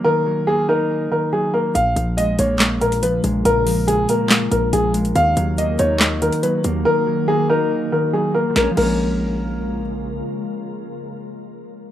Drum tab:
CC |----------------|----------------|----------------|----------------|
HH |----------------|x-x-x-x-x-xxx-x-|x-o-x-x-x-x-x-xx|x-x-x-x-x-xxx-x-|
CP |----------------|--------x-------|--------x-------|--------x-------|
SD |----------------|--------o-------|--------o-------|--------o-------|

CC |----------------|--x-------------|----------------|
HH |----------------|----------------|----------------|
CP |----------------|----------------|----------------|
SD |----------------|o---------------|----------------|